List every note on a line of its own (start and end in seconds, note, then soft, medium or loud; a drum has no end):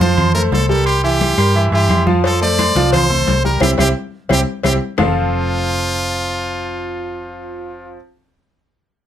0.00 0.48 F2 medium
0.00 0.29 F3 medium
0.00 0.29 F4 medium
0.00 0.33 C5 loud
0.00 0.29 F5 medium
0.00 high conga loud
0.17 high conga soft
0.17 low conga medium
0.17 low agogo loud
0.17 claves medium
0.34 0.63 A3 medium
0.34 0.63 A4 medium
0.34 0.42 A#4 loud
0.34 0.63 C5 medium
0.34 high conga soft
0.52 1.32 C2 medium
0.52 0.68 A4 loud
0.52 high conga medium
0.52 low timbale medium
0.52 low agogo medium
0.69 0.97 G3 medium
0.69 0.98 G4 medium
0.69 0.85 A4 medium
0.69 0.98 A#4 medium
0.69 high conga medium
0.86 1.02 G4 loud
0.86 high conga soft
0.86 low agogo loud
0.86 claves medium
1.04 1.32 E3 medium
1.04 1.32 E4 medium
1.04 1.69 G4 loud
1.04 1.32 E5 medium
1.04 high conga soft
1.21 high conga loud
1.21 low timbale medium
1.21 low agogo medium
1.38 1.70 G2 loud
1.38 1.52 G3 medium
1.38 1.52 G4 medium
1.38 1.53 A#4 medium
1.38 high conga soft
1.38 low agogo loud
1.38 claves medium
1.55 1.69 E3 medium
1.55 1.70 E4 medium
1.55 1.70 E5 medium
1.55 high conga soft
1.71 1.88 G2 medium
1.71 2.01 E3 medium
1.71 2.01 E4 medium
1.71 2.06 G4 loud
1.71 2.01 E5 medium
1.71 high conga soft
1.71 low agogo medium
1.89 2.70 F2 loud
1.89 high conga medium
1.89 low timbale medium
1.89 low agogo loud
1.89 claves medium
2.06 2.21 F3 medium
2.06 2.21 F4 medium
2.06 2.21 F5 medium
2.06 high conga medium
2.24 2.38 F3 medium
2.24 2.38 F4 medium
2.24 2.41 A4 loud
2.24 2.39 F5 medium
2.24 cowbell loud
2.24 high conga soft
2.24 low agogo medium
2.41 2.70 A3 medium
2.41 2.70 A4 medium
2.41 2.70 C5 medium
2.41 2.90 D5 loud
2.41 high conga soft
2.59 cowbell medium
2.59 high conga loud
2.59 low timbale medium
2.59 low agogo loud
2.59 claves medium
2.75 3.23 C2 loud
2.75 3.04 F3 medium
2.75 3.05 F4 medium
2.75 3.05 F5 loud
2.75 cowbell medium
2.75 high conga loud
2.92 3.41 C5 loud
2.92 cowbell loud
2.92 high conga soft
2.92 low conga medium
2.92 low agogo loud
2.92 claves medium
3.10 3.38 A3 medium
3.10 3.38 A4 medium
3.10 3.38 C5 medium
3.10 high conga soft
3.10 low conga medium
3.27 3.59 C2 loud
3.27 cowbell medium
3.27 high conga medium
3.27 low timbale medium
3.27 low agogo medium
3.44 3.59 G3 medium
3.44 3.59 G4 medium
3.44 3.59 A#4 medium
3.44 3.61 A#4 medium
3.44 high conga medium
3.61 3.74 C2 loud
3.61 3.72 C4 loud
3.61 3.73 E4 loud
3.61 3.73 G4 loud
3.61 3.71 G4 loud
3.61 cowbell loud
3.61 high conga loud
3.61 high timbale loud
3.61 claves loud
3.78 3.91 C2 loud
3.78 3.90 C4 loud
3.78 3.90 E4 loud
3.78 3.90 G4 loud
3.78 3.88 G4 loud
3.78 cowbell loud
3.78 high conga loud
3.78 high timbale loud
3.78 claves loud
4.29 4.43 C2 loud
4.29 4.41 C4 loud
4.29 4.41 E4 loud
4.29 4.41 G4 loud
4.29 4.40 G4 loud
4.29 cowbell loud
4.29 high conga loud
4.29 high timbale loud
4.29 claves loud
4.63 4.77 C2 loud
4.63 4.76 C4 loud
4.63 4.76 E4 loud
4.63 4.76 G4 loud
4.63 4.73 G4 loud
4.63 cowbell loud
4.63 high conga loud
4.63 high timbale loud
4.63 claves loud
4.98 7.96 F1 loud
4.98 7.95 F3 loud
4.98 7.96 C4 medium
4.98 7.96 F4 medium
4.98 7.97 F4 loud
4.98 7.96 A4 medium
4.98 7.96 C5 medium
4.98 7.96 F5 loud
4.98 low bongo loud
4.98 low conga loud
4.98 low timbale loud
4.98 claves loud